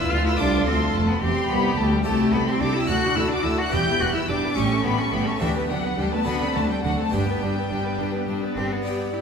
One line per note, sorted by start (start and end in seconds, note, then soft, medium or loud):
0.00 0.10 E1 medium
0.00 0.11 E2 medium
0.00 0.13 E4 medium
0.00 0.35 F4 medium
0.00 1.22 F4 medium
0.00 0.36 B4 medium
0.00 0.39 B4 medium
0.00 0.11 E6 medium
0.10 0.38 D2 medium
0.10 0.39 D2 medium
0.10 0.37 D2 medium
0.10 0.25 F4 medium
0.10 0.25 F6 loud
0.25 0.31 E4 medium
0.25 0.39 E6 medium
0.37 0.66 C2 medium
0.37 0.64 C2 medium
0.37 0.66 D4 medium
0.37 2.00 E4 medium
0.37 1.22 A4 medium
0.37 2.01 C5 medium
0.37 0.66 D6 loud
0.65 0.93 D2 medium
0.65 0.92 D2 medium
0.65 0.94 D2 medium
0.65 0.75 C4 medium
0.65 0.93 C6 loud
0.93 1.21 F1 medium
0.93 1.22 F2 medium
0.93 1.19 F2 medium
0.93 1.09 A3 medium
0.93 1.08 A5 medium
1.07 1.21 B3 medium
1.07 1.22 B5 medium
1.21 1.29 E1 medium
1.21 1.30 E2 medium
1.21 1.48 E2 medium
1.21 1.49 C4 medium
1.21 2.03 G4 medium
1.21 2.04 G4 medium
1.21 1.49 C6 loud
1.49 1.76 C2 medium
1.49 1.77 C2 medium
1.49 1.75 C2 medium
1.49 1.77 B3 medium
1.49 1.77 B5 loud
1.77 2.04 D2 medium
1.77 2.05 D2 medium
1.77 2.03 D2 medium
1.77 1.94 A3 medium
1.77 1.92 A5 loud
1.92 2.07 G3 medium
1.92 1.98 G5 medium
2.03 2.13 C2 medium
2.03 2.31 C2 medium
2.03 2.35 A3 medium
2.03 2.85 E4 medium
2.03 2.18 G4 medium
2.03 2.18 A4 medium
2.03 2.86 C5 medium
2.03 2.33 A5 medium
2.19 2.33 E4 medium
2.19 2.33 G4 medium
2.33 2.41 C2 medium
2.33 2.58 C2 medium
2.33 2.45 B3 medium
2.33 2.47 G4 medium
2.33 2.47 A4 medium
2.33 2.47 B5 loud
2.46 2.62 C4 medium
2.46 2.61 E4 medium
2.46 2.61 G4 medium
2.46 2.62 C6 medium
2.60 2.69 C2 medium
2.60 2.86 C2 medium
2.60 2.76 D4 medium
2.60 2.74 G4 medium
2.60 2.74 A4 medium
2.60 2.75 D6 loud
2.75 2.88 E4 medium
2.75 2.89 E4 medium
2.75 2.89 G4 medium
2.75 2.90 E6 loud
2.86 2.96 D2 medium
2.86 2.97 D2 medium
2.86 3.14 D2 medium
2.86 3.69 F#4 medium
2.86 3.17 F#4 medium
2.86 3.02 F#4 medium
2.86 3.69 A4 medium
2.90 3.02 A4 medium
2.90 3.17 F#6 loud
3.04 3.17 D4 medium
3.04 3.17 F#4 medium
3.16 3.24 D2 medium
3.16 3.42 D2 medium
3.16 3.30 E4 medium
3.16 3.31 F#4 medium
3.16 3.31 A4 medium
3.16 3.31 E6 loud
3.29 3.45 D4 medium
3.33 3.46 F#4 medium
3.33 3.46 D6 medium
3.43 3.52 D2 medium
3.43 3.70 D2 medium
3.43 3.60 E4 medium
3.43 3.58 F#4 medium
3.43 3.58 A4 medium
3.43 3.60 E6 loud
3.58 3.73 D4 medium
3.58 3.73 F#4 medium
3.58 3.74 F#6 medium
3.68 3.80 E1 medium
3.68 4.52 B3 medium
3.68 4.53 E4 medium
3.68 4.54 G4 medium
3.68 4.02 G4 medium
3.73 3.81 E2 medium
3.73 3.98 E2 medium
3.73 3.87 G3 medium
3.73 3.87 G4 medium
3.73 4.02 G6 loud
3.88 4.02 B3 medium
3.88 4.01 E4 medium
4.00 4.08 E1 medium
4.00 4.09 E2 medium
4.00 4.27 E2 medium
4.00 4.16 G3 medium
4.00 4.13 F#4 medium
4.00 4.15 G4 medium
4.00 4.16 F#6 loud
4.14 4.30 B3 medium
4.14 4.20 E4 medium
4.14 4.29 E4 medium
4.14 4.30 E6 medium
4.28 4.37 E1 medium
4.28 4.37 E2 medium
4.28 4.55 E2 medium
4.28 4.43 G3 medium
4.28 4.57 D4 medium
4.28 4.42 G4 medium
4.28 4.57 D6 loud
4.44 4.58 B3 medium
4.44 4.58 E4 medium
4.53 4.65 A1 medium
4.53 4.65 A2 medium
4.53 5.37 A3 medium
4.53 4.86 C#4 medium
4.53 5.37 E4 medium
4.53 5.38 G4 medium
4.58 4.83 A2 medium
4.58 4.71 G3 medium
4.58 4.70 G4 medium
4.58 4.85 C#6 loud
4.71 4.85 A3 medium
4.71 4.85 A4 medium
4.84 4.93 A1 medium
4.84 4.93 A2 medium
4.84 5.11 A2 medium
4.84 5.00 G3 medium
4.84 4.99 B3 medium
4.84 4.99 G4 medium
4.84 4.99 B5 medium
4.98 5.13 A3 medium
4.98 5.13 C#4 medium
4.98 5.13 A4 medium
4.98 5.14 C#6 medium
5.12 5.21 A1 medium
5.12 5.21 A2 medium
5.12 5.39 A2 medium
5.12 5.26 G3 medium
5.12 5.27 B3 medium
5.12 5.26 G4 medium
5.12 5.27 B5 medium
5.25 5.42 A3 medium
5.25 5.40 C#4 medium
5.25 5.41 A4 medium
5.25 5.42 C#6 medium
5.37 5.49 D3 medium
5.37 5.49 E3 medium
5.37 6.22 B3 medium
5.37 6.23 D4 medium
5.37 6.23 G4 medium
5.41 5.50 D2 medium
5.41 5.67 D3 medium
5.41 5.55 D4 medium
5.41 5.54 G4 medium
5.41 5.50 E5 loud
5.56 5.70 B3 medium
5.56 5.70 B4 medium
5.69 5.78 D2 medium
5.69 5.77 D3 medium
5.69 5.96 D3 medium
5.69 5.97 F#3 medium
5.69 5.84 D4 medium
5.69 5.84 G4 medium
5.69 5.98 F#5 medium
5.83 5.98 B3 medium
5.83 5.98 B4 medium
5.97 6.06 D2 medium
5.97 6.06 D3 medium
5.97 6.24 D3 medium
5.97 6.11 G3 medium
5.97 6.11 D4 medium
5.97 6.11 G4 medium
5.97 6.13 G5 medium
6.12 6.25 A3 medium
6.12 6.27 B3 medium
6.12 6.26 B4 medium
6.12 6.27 A5 medium
6.22 6.34 D2 medium
6.22 6.34 D3 medium
6.22 6.54 B3 medium
6.22 7.08 C4 medium
6.22 7.09 D4 medium
6.22 7.10 F#4 medium
6.22 6.40 F#4 medium
6.27 6.53 D3 medium
6.27 6.40 D4 medium
6.27 6.55 B5 medium
6.40 6.55 C4 medium
6.40 6.55 A4 medium
6.55 6.63 D2 medium
6.55 6.63 D3 medium
6.55 6.82 D3 medium
6.55 6.68 A3 medium
6.55 6.70 D4 medium
6.55 6.70 F#4 medium
6.55 6.70 A5 medium
6.69 6.83 G3 medium
6.69 6.84 C4 medium
6.69 6.84 A4 medium
6.69 6.84 G5 medium
6.83 6.92 D2 medium
6.83 6.92 D3 medium
6.83 7.10 D3 medium
6.83 6.90 F#3 medium
6.83 6.97 D4 medium
6.83 6.97 F#4 medium
6.83 6.98 F#5 medium
6.98 7.14 A3 medium
6.98 7.13 C4 medium
6.98 7.13 A4 medium
6.98 7.13 A5 medium
7.09 7.21 G1 medium
7.09 7.20 G2 medium
7.09 8.55 G3 medium
7.09 8.80 B3 medium
7.09 8.80 D4 soft
7.09 7.26 D4 medium
7.09 8.81 G4 soft
7.09 7.26 G4 medium
7.13 7.39 G2 medium
7.13 8.58 G5 medium
7.26 7.41 B3 medium
7.26 7.42 B4 medium
7.40 7.50 G1 medium
7.40 7.50 G2 medium
7.40 7.68 G2 medium
7.40 7.56 D4 medium
7.40 7.56 G4 medium
7.55 7.70 B3 medium
7.55 7.71 B4 medium
7.70 7.79 G1 medium
7.70 7.79 G2 medium
7.70 7.97 G2 medium
7.70 7.83 D4 medium
7.70 7.84 G4 medium
7.84 7.99 B3 medium
7.84 7.99 B4 medium
7.99 8.07 G1 medium
7.99 8.07 G2 medium
7.99 8.26 G2 medium
7.99 8.13 D4 medium
7.99 8.14 G4 medium
8.13 8.28 B3 medium
8.13 8.28 B4 medium
8.27 8.36 G1 medium
8.27 8.36 G2 medium
8.27 8.54 G2 medium
8.27 8.41 D4 medium
8.27 8.41 G4 soft
8.42 8.57 B3 medium
8.42 8.57 B4 medium
8.56 8.65 G1 medium
8.56 8.65 G2 medium
8.56 8.83 G2 medium
8.56 8.73 C4 medium
8.56 8.71 D4 medium
8.56 8.71 G4 medium
8.70 8.85 B3 medium
8.70 9.15 B3 medium
8.70 8.85 B4 medium
8.82 9.21 G2 soft
8.82 9.21 B3 soft
8.82 9.21 D4 soft
8.82 9.11 G4 soft
8.82 9.21 G4 soft
8.82 9.13 D5 soft
8.82 9.12 G5 soft
8.86 9.21 G2 soft
9.12 9.21 E4 soft
9.12 9.21 G4 soft
9.12 9.21 D5 soft
9.12 9.21 G5 soft